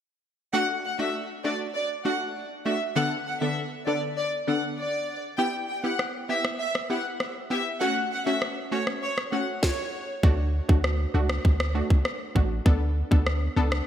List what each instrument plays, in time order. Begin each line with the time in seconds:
0.53 synth pluck A3 D4 F#4, violin section F#5
0.84 violin section F#5
0.99 synth pluck A3 D4 F#4, violin section E5
1.44 synth pluck A3 D4 F#4, violin section D5
1.75 violin section D5
2.05 synth pluck A3 D4 F#4, violin section F#5
2.66 synth pluck A3 D4 F#4, violin section E5
2.96 synth pluck D3 B3 D4 A4, violin section F#5
3.26 violin section F#5
3.41 synth pluck D3 B3 D4 A4, violin section E5
3.87 synth pluck D3 B3 D4 A4, violin section D5
4.17 violin section D5
4.47 synth pluck D3 B3 D4 A4, violin section F#5
4.78 violin section D5
5.38 synth pluck B3 E4 G4, violin section G5
5.69 violin section G5
5.84 synth pluck B3 E4 G4, violin section F#5
5.99 cross-stick
6.29 synth pluck B3 E4 G4, violin section E5
6.45 cross-stick
6.60 violin section E5
6.75 cross-stick
6.90 synth pluck B3 E4 G4, violin section F#5
7.20 cross-stick
7.50 synth pluck B3 E4 G4, violin section E5
7.81 synth pluck A3 C#4 F#4, violin section F#5
8.11 violin section F#5
8.26 synth pluck A3 C#4 F#4, violin section E5
8.42 cross-stick
8.72 synth pluck A3 C#4 F#4, violin section C#5
8.87 cross-stick
9.02 violin section C#5
9.18 cross-stick
9.32 synth pluck A3 C#4 F#4, violin section F#5
9.63 violin section C#5, kick, snare
10.23 sub bass D2, synth pluck A3 D4 F#4, kick
10.69 sub bass D2, synth pluck A3 D4 F#4, kick
10.84 cross-stick
11.14 sub bass C#2, synth pluck A3 D4 F#4
11.29 cross-stick
11.45 sub bass D2, kick
11.60 cross-stick
11.75 synth pluck A3 D4 F#4
11.90 sub bass C#2, kick
12.05 cross-stick
12.35 sub bass A1, synth pluck A3 D4 F#4, kick
12.65 sub bass D2, synth pluck B3 D4 A4, kick
13.11 sub bass D2, synth pluck B3 D4 A4, kick
13.27 cross-stick
13.56 sub bass C#2, synth pluck B3 D4 A4
13.72 cross-stick